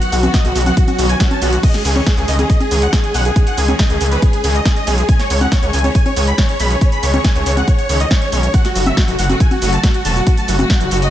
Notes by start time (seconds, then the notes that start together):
0.01 F#5, closed hi-hat, shaker
0.12 B1 F#4, open hi-hat, shaker
0.23 D#3 F#3 B3 F#4, closed hi-hat, high conga, shaker
0.34 D#5, kick, snare, closed hi-hat, shaker
0.45 B1 D#3 F#3 B3 F#4, closed hi-hat, shaker
0.55 B1 F#4, open hi-hat, shaker
0.61 closed hi-hat
0.66 D#3 F#3 B3 F#4 F#5, closed hi-hat, high conga, shaker
0.77 F#4, kick, closed hi-hat, swell, shaker
0.88 F#4, closed hi-hat, high conga, shaker
0.98 B1 D#3 F#3 B3 F#4, open hi-hat, shaker
1.09 G#5, closed hi-hat, shaker
1.20 D#3 F#3 B3 F#4, kick, snare, closed hi-hat, shaker
1.31 A5, closed hi-hat, high conga
1.42 B1 D#3 F#3 B3 F#4, open hi-hat, shaker
1.53 F#4, closed hi-hat, shaker
1.63 D#3 G#3 C#4 G#4 D#5, kick, closed hi-hat, crash, shaker
1.74 G#4, snare, closed hi-hat, shaker
1.85 C#2 G#4, open hi-hat, shaker
1.96 D#3 G#3 C#4 G#4 C#5, closed hi-hat, high conga, shaker
2.06 G#4, kick, snare, closed hi-hat, shaker
2.17 C#2 D#3 G#3 C#4 G#4, closed hi-hat, shaker
2.28 C#2 D#5, open hi-hat, shaker
2.33 closed hi-hat
2.39 D#3 G#3 C#4 G#4, closed hi-hat, high conga, shaker
2.50 D#5, kick, closed hi-hat, shaker
2.60 G#4, closed hi-hat, high conga
2.71 C#2 D#3 G#3 C#4 G#4, open hi-hat, shaker
2.82 F#5, closed hi-hat, shaker
2.93 D#3 G#3 C#4 G#4, kick, snare, closed hi-hat, shaker
3.04 G#4, closed hi-hat
3.14 B1 D#3 G#3 C#4 G#4 F#5, open hi-hat, shaker
3.25 G#4, closed hi-hat, shaker
3.36 D#3 G#3 C#4 G#4, kick, closed hi-hat, shaker
3.47 F#5, closed hi-hat, shaker
3.58 C#2 G#4, open hi-hat, shaker
3.68 D#3 G#3 C#4 G#4, closed hi-hat, high conga, shaker
3.79 D#5, kick, snare, closed hi-hat, shaker
3.90 C#2 D#3 G#3 C#4 G#4, closed hi-hat, shaker
4.01 C#2 G#4, open hi-hat, shaker
4.06 closed hi-hat
4.11 D#3 G#3 C#4 G#4 B4, closed hi-hat, shaker
4.22 G#4, kick, closed hi-hat, shaker
4.33 G#4, closed hi-hat
4.44 C#2 D#3 G#3 C#4 G#4, open hi-hat, shaker
4.55 D#5, closed hi-hat, shaker
4.65 D#3 G#3 C#4 G#4, kick, snare, closed hi-hat, shaker
4.76 D#5, closed hi-hat
4.87 B1 D#3 G#3 C#4 G#4, open hi-hat, shaker
4.98 G#4, closed hi-hat, shaker
5.08 D#3 G#3 C#4 G#4 G#5, kick, closed hi-hat, shaker
5.19 C#5, snare, closed hi-hat, shaker
5.30 C#2 C#5, open hi-hat, shaker
5.41 D#3 G#3 C#4 G#4 F#5, closed hi-hat, high conga, shaker
5.52 C#5, kick, snare, closed hi-hat, shaker
5.63 C#2 D#3 G#3 C#4 G#4 C#5, closed hi-hat, shaker
5.73 C#2 G#5, open hi-hat, shaker
5.79 closed hi-hat
5.84 D#3 G#3 C#4 G#4 C#5, closed hi-hat, high conga, shaker
5.95 G#5, kick, closed hi-hat, shaker
6.06 C#5, closed hi-hat, high conga
6.16 C#2 D#3 G#3 C#4 G#4 C#5, open hi-hat, shaker
6.27 B5, closed hi-hat, shaker
6.38 D#3 G#3 C#4 G#4 C#5, kick, snare, closed hi-hat, shaker
6.49 C#5, closed hi-hat
6.60 B1 D#3 G#3 C#4 G#4 B5, open hi-hat, shaker
6.70 C#5, closed hi-hat, shaker
6.81 D#3 G#3 C#4 G#4 C#5, kick, closed hi-hat, shaker
6.92 B5, closed hi-hat, shaker
7.03 C#2 C#5, open hi-hat, shaker
7.14 D#3 G#3 C#4 G#4 C#5, closed hi-hat, high conga, shaker
7.25 G#5, kick, snare, closed hi-hat, shaker
7.35 C#2 D#3 G#3 C#4 G#4 C#5, closed hi-hat, shaker
7.46 C#2 C#5, open hi-hat, shaker
7.52 closed hi-hat
7.57 D#3 G#3 C#4 G#4 F#5, closed hi-hat, high conga, shaker
7.68 C#5, kick, closed hi-hat, shaker
7.79 C#5, closed hi-hat, shaker
7.89 C#2 D#3 G#3 C#4 G#4 C#5, open hi-hat, shaker
8.00 D#5, closed hi-hat, shaker
8.11 D#3 G#3 C#4 G#4 C#5, kick, snare, closed hi-hat, shaker
8.22 C#5, closed hi-hat
8.32 B1 D#3 G#3 C#4 G#4 C#5, open hi-hat, shaker
8.43 C#5, closed hi-hat, shaker
8.54 C#3 F#3 A3 F#4 F#5, kick, closed hi-hat, shaker
8.65 F#4, snare, closed hi-hat, shaker
8.76 F#1 F#4, open hi-hat, shaker
8.86 C#3 F#3 A3 F#4 E5, closed hi-hat, high conga, shaker
8.97 F#4, kick, snare, closed hi-hat, shaker
9.08 F#1 C#3 F#3 A3 F#4, closed hi-hat, shaker
9.19 F#1 F#5, open hi-hat, shaker
9.24 closed hi-hat
9.30 C#3 F#3 A3 F#4, closed hi-hat, high conga, shaker
9.40 G#5, kick, closed hi-hat, shaker
9.51 F#4, closed hi-hat, high conga
9.62 F#1 C#3 F#3 A3 F#4, open hi-hat, shaker
9.73 A5, closed hi-hat, shaker
9.84 C#3 F#3 A3 F#4, kick, snare, closed hi-hat, shaker
9.94 F#4, closed hi-hat
10.05 E1 C#3 F#3 A3 F#4 A5, open hi-hat, shaker
10.16 F#4, closed hi-hat, shaker
10.27 C#3 F#3 A3 F#4, kick, closed hi-hat, shaker
10.37 A5, closed hi-hat, shaker
10.48 F#1 F#4, open hi-hat, shaker
10.59 C#3 F#3 A3 F#4, closed hi-hat, high conga, shaker
10.70 F#5, kick, snare, closed hi-hat, shaker
10.81 F#1 C#3 F#3 A3 F#4, closed hi-hat, shaker
10.91 F#1 F#4, open hi-hat, shaker
10.97 closed hi-hat
11.02 C#3 F#3 A3 F#4 D#5, closed hi-hat, shaker